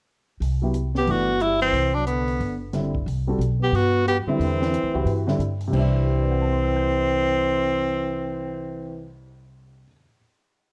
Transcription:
0.40 C2, open hi-hat
0.62 F#3 B3 E4 G4
0.74 closed hi-hat
0.95 B3 G4, snare
1.07 G1 E3 A3 B3 D4 F#4, open hi-hat
1.40 G3 E4, closed hi-hat
1.61 E3 C4, open hi-hat
1.72 C2, open hi-hat
1.94 F#3 D4
2.07 D3 B3, closed hi-hat
2.28 open hi-hat
2.40 G1, open hi-hat
2.73 D3 G3 C4 E4, snare, closed hi-hat
2.95 kick
3.06 C2, open hi-hat
3.27 G3 C4 F#4 A4
3.38 B1, closed hi-hat
3.61 B3 G4
3.72 G2 B3 F#4, open hi-hat
4.06 B3 G4, closed hi-hat
4.26 D3 E3 G3 C4 E4, muted upright bass stroke
4.39 E2, open hi-hat
4.62 snare
4.74 closed hi-hat
4.83 D2
4.94 C#2 E4 F#4 G4 B4
5.05 G2, open hi-hat
5.27 D3 G3 C4 E4, snare
5.39 G2, closed hi-hat
5.61 open hi-hat
5.68 C3 G3
5.72 C2 E3 C4, kick, crash
5.76 D4 E4
5.95 cymbal swell
6.07 G4
6.14 B4
6.22 D5
6.31 F#5
6.41 A5
6.52 C6
6.64 E6
6.76 G6

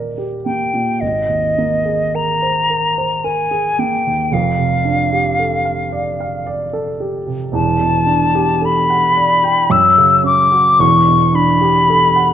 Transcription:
Already playing: D#1 D#2 A#2 A#3 G4 A#4 D5
0.18 G4
0.45 A#3 G5
0.74 A#2
1.01 G#1 D#5
1.28 D#2
1.58 A#3
1.85 G#4
2.15 A#4 A#5
2.42 C5
2.70 A#4
2.98 C5
3.24 A#4 G#5
3.51 G#4
3.79 A#3 G5
4.07 D#2
4.32 F1 F2 F5
4.58 C3
4.85 D4
5.12 G4
5.39 A4
5.65 F5
5.92 D5
6.20 F5
6.47 D5
6.73 A4
7.00 G4
7.27 C3
7.52 E1 E2 A5
7.79 B2
8.06 D4
8.35 G4
8.62 A4 B5
8.90 F#5
9.17 D5
9.44 G5
9.70 F#2 E6
9.98 C#3
10.23 C#4 D6
10.52 F#4
10.79 E1 E2 C#6
11.08 B2
11.34 D4 B5
11.61 G4
11.90 A4
12.16 F#5

